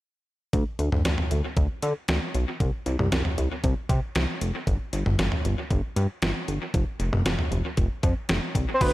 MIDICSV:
0, 0, Header, 1, 4, 480
1, 0, Start_track
1, 0, Tempo, 517241
1, 495, Time_signature, 4, 2, 24, 8
1, 8289, End_track
2, 0, Start_track
2, 0, Title_t, "Analog synth lead"
2, 0, Program_c, 0, 81
2, 8111, Note_on_c, 0, 72, 69
2, 8176, Note_on_c, 0, 71, 95
2, 8190, Note_off_c, 0, 72, 0
2, 8289, Note_off_c, 0, 71, 0
2, 8289, End_track
3, 0, Start_track
3, 0, Title_t, "Analog synth bass"
3, 0, Program_c, 1, 38
3, 495, Note_on_c, 1, 38, 101
3, 593, Note_off_c, 1, 38, 0
3, 733, Note_on_c, 1, 38, 89
3, 832, Note_off_c, 1, 38, 0
3, 854, Note_on_c, 1, 38, 99
3, 953, Note_off_c, 1, 38, 0
3, 975, Note_on_c, 1, 38, 94
3, 1073, Note_off_c, 1, 38, 0
3, 1216, Note_on_c, 1, 38, 88
3, 1314, Note_off_c, 1, 38, 0
3, 1454, Note_on_c, 1, 38, 101
3, 1553, Note_off_c, 1, 38, 0
3, 1695, Note_on_c, 1, 50, 102
3, 1793, Note_off_c, 1, 50, 0
3, 1935, Note_on_c, 1, 38, 96
3, 2033, Note_off_c, 1, 38, 0
3, 2177, Note_on_c, 1, 35, 93
3, 2274, Note_off_c, 1, 35, 0
3, 2415, Note_on_c, 1, 36, 103
3, 2513, Note_off_c, 1, 36, 0
3, 2656, Note_on_c, 1, 36, 99
3, 2754, Note_off_c, 1, 36, 0
3, 2776, Note_on_c, 1, 36, 99
3, 2874, Note_off_c, 1, 36, 0
3, 2897, Note_on_c, 1, 36, 102
3, 2994, Note_off_c, 1, 36, 0
3, 3137, Note_on_c, 1, 36, 93
3, 3234, Note_off_c, 1, 36, 0
3, 3375, Note_on_c, 1, 36, 103
3, 3473, Note_off_c, 1, 36, 0
3, 3613, Note_on_c, 1, 48, 99
3, 3712, Note_off_c, 1, 48, 0
3, 3856, Note_on_c, 1, 36, 98
3, 3954, Note_off_c, 1, 36, 0
3, 4097, Note_on_c, 1, 29, 88
3, 4194, Note_off_c, 1, 29, 0
3, 4334, Note_on_c, 1, 31, 105
3, 4433, Note_off_c, 1, 31, 0
3, 4575, Note_on_c, 1, 31, 97
3, 4673, Note_off_c, 1, 31, 0
3, 4695, Note_on_c, 1, 31, 97
3, 4793, Note_off_c, 1, 31, 0
3, 4816, Note_on_c, 1, 31, 96
3, 4914, Note_off_c, 1, 31, 0
3, 5056, Note_on_c, 1, 31, 97
3, 5153, Note_off_c, 1, 31, 0
3, 5296, Note_on_c, 1, 31, 111
3, 5394, Note_off_c, 1, 31, 0
3, 5534, Note_on_c, 1, 43, 104
3, 5633, Note_off_c, 1, 43, 0
3, 5774, Note_on_c, 1, 31, 96
3, 5872, Note_off_c, 1, 31, 0
3, 6014, Note_on_c, 1, 31, 86
3, 6113, Note_off_c, 1, 31, 0
3, 6255, Note_on_c, 1, 29, 105
3, 6353, Note_off_c, 1, 29, 0
3, 6493, Note_on_c, 1, 29, 86
3, 6592, Note_off_c, 1, 29, 0
3, 6614, Note_on_c, 1, 29, 94
3, 6712, Note_off_c, 1, 29, 0
3, 6735, Note_on_c, 1, 29, 98
3, 6833, Note_off_c, 1, 29, 0
3, 6973, Note_on_c, 1, 29, 95
3, 7072, Note_off_c, 1, 29, 0
3, 7214, Note_on_c, 1, 29, 106
3, 7313, Note_off_c, 1, 29, 0
3, 7453, Note_on_c, 1, 41, 100
3, 7552, Note_off_c, 1, 41, 0
3, 7693, Note_on_c, 1, 29, 100
3, 7792, Note_off_c, 1, 29, 0
3, 7933, Note_on_c, 1, 36, 87
3, 8032, Note_off_c, 1, 36, 0
3, 8175, Note_on_c, 1, 38, 102
3, 8273, Note_off_c, 1, 38, 0
3, 8289, End_track
4, 0, Start_track
4, 0, Title_t, "Drums"
4, 494, Note_on_c, 9, 36, 105
4, 495, Note_on_c, 9, 42, 63
4, 587, Note_off_c, 9, 36, 0
4, 587, Note_off_c, 9, 42, 0
4, 734, Note_on_c, 9, 42, 71
4, 826, Note_off_c, 9, 42, 0
4, 857, Note_on_c, 9, 47, 86
4, 950, Note_off_c, 9, 47, 0
4, 974, Note_on_c, 9, 42, 76
4, 976, Note_on_c, 9, 38, 101
4, 1067, Note_off_c, 9, 42, 0
4, 1069, Note_off_c, 9, 38, 0
4, 1094, Note_on_c, 9, 45, 90
4, 1187, Note_off_c, 9, 45, 0
4, 1215, Note_on_c, 9, 42, 64
4, 1308, Note_off_c, 9, 42, 0
4, 1453, Note_on_c, 9, 42, 58
4, 1454, Note_on_c, 9, 36, 89
4, 1546, Note_off_c, 9, 42, 0
4, 1547, Note_off_c, 9, 36, 0
4, 1693, Note_on_c, 9, 42, 71
4, 1786, Note_off_c, 9, 42, 0
4, 1932, Note_on_c, 9, 42, 67
4, 1937, Note_on_c, 9, 38, 101
4, 2025, Note_off_c, 9, 42, 0
4, 2030, Note_off_c, 9, 38, 0
4, 2176, Note_on_c, 9, 42, 73
4, 2269, Note_off_c, 9, 42, 0
4, 2415, Note_on_c, 9, 36, 107
4, 2415, Note_on_c, 9, 42, 63
4, 2508, Note_off_c, 9, 36, 0
4, 2508, Note_off_c, 9, 42, 0
4, 2655, Note_on_c, 9, 42, 73
4, 2748, Note_off_c, 9, 42, 0
4, 2777, Note_on_c, 9, 47, 84
4, 2870, Note_off_c, 9, 47, 0
4, 2895, Note_on_c, 9, 42, 73
4, 2897, Note_on_c, 9, 38, 103
4, 2988, Note_off_c, 9, 42, 0
4, 2990, Note_off_c, 9, 38, 0
4, 3016, Note_on_c, 9, 45, 85
4, 3109, Note_off_c, 9, 45, 0
4, 3136, Note_on_c, 9, 42, 63
4, 3229, Note_off_c, 9, 42, 0
4, 3374, Note_on_c, 9, 42, 59
4, 3375, Note_on_c, 9, 36, 92
4, 3467, Note_off_c, 9, 42, 0
4, 3468, Note_off_c, 9, 36, 0
4, 3614, Note_on_c, 9, 36, 96
4, 3615, Note_on_c, 9, 42, 73
4, 3706, Note_off_c, 9, 36, 0
4, 3707, Note_off_c, 9, 42, 0
4, 3852, Note_on_c, 9, 42, 67
4, 3857, Note_on_c, 9, 38, 103
4, 3945, Note_off_c, 9, 42, 0
4, 3950, Note_off_c, 9, 38, 0
4, 4096, Note_on_c, 9, 42, 71
4, 4189, Note_off_c, 9, 42, 0
4, 4335, Note_on_c, 9, 36, 103
4, 4335, Note_on_c, 9, 42, 65
4, 4428, Note_off_c, 9, 36, 0
4, 4428, Note_off_c, 9, 42, 0
4, 4574, Note_on_c, 9, 42, 72
4, 4667, Note_off_c, 9, 42, 0
4, 4696, Note_on_c, 9, 47, 89
4, 4789, Note_off_c, 9, 47, 0
4, 4814, Note_on_c, 9, 42, 74
4, 4816, Note_on_c, 9, 38, 103
4, 4907, Note_off_c, 9, 42, 0
4, 4909, Note_off_c, 9, 38, 0
4, 4935, Note_on_c, 9, 45, 89
4, 5028, Note_off_c, 9, 45, 0
4, 5057, Note_on_c, 9, 42, 65
4, 5150, Note_off_c, 9, 42, 0
4, 5294, Note_on_c, 9, 42, 57
4, 5295, Note_on_c, 9, 36, 93
4, 5387, Note_off_c, 9, 42, 0
4, 5388, Note_off_c, 9, 36, 0
4, 5535, Note_on_c, 9, 42, 74
4, 5628, Note_off_c, 9, 42, 0
4, 5772, Note_on_c, 9, 42, 69
4, 5777, Note_on_c, 9, 38, 104
4, 5865, Note_off_c, 9, 42, 0
4, 5870, Note_off_c, 9, 38, 0
4, 6016, Note_on_c, 9, 42, 72
4, 6108, Note_off_c, 9, 42, 0
4, 6255, Note_on_c, 9, 36, 104
4, 6255, Note_on_c, 9, 42, 61
4, 6348, Note_off_c, 9, 36, 0
4, 6348, Note_off_c, 9, 42, 0
4, 6493, Note_on_c, 9, 42, 69
4, 6586, Note_off_c, 9, 42, 0
4, 6616, Note_on_c, 9, 47, 89
4, 6709, Note_off_c, 9, 47, 0
4, 6734, Note_on_c, 9, 42, 73
4, 6735, Note_on_c, 9, 38, 106
4, 6826, Note_off_c, 9, 42, 0
4, 6828, Note_off_c, 9, 38, 0
4, 6855, Note_on_c, 9, 45, 90
4, 6948, Note_off_c, 9, 45, 0
4, 6976, Note_on_c, 9, 42, 65
4, 7069, Note_off_c, 9, 42, 0
4, 7213, Note_on_c, 9, 42, 60
4, 7215, Note_on_c, 9, 36, 89
4, 7306, Note_off_c, 9, 42, 0
4, 7308, Note_off_c, 9, 36, 0
4, 7453, Note_on_c, 9, 36, 97
4, 7454, Note_on_c, 9, 42, 77
4, 7546, Note_off_c, 9, 36, 0
4, 7547, Note_off_c, 9, 42, 0
4, 7692, Note_on_c, 9, 42, 69
4, 7696, Note_on_c, 9, 38, 104
4, 7785, Note_off_c, 9, 42, 0
4, 7789, Note_off_c, 9, 38, 0
4, 7933, Note_on_c, 9, 36, 87
4, 7936, Note_on_c, 9, 42, 75
4, 8026, Note_off_c, 9, 36, 0
4, 8029, Note_off_c, 9, 42, 0
4, 8175, Note_on_c, 9, 36, 107
4, 8176, Note_on_c, 9, 49, 88
4, 8177, Note_on_c, 9, 42, 66
4, 8268, Note_off_c, 9, 36, 0
4, 8269, Note_off_c, 9, 42, 0
4, 8269, Note_off_c, 9, 49, 0
4, 8289, End_track
0, 0, End_of_file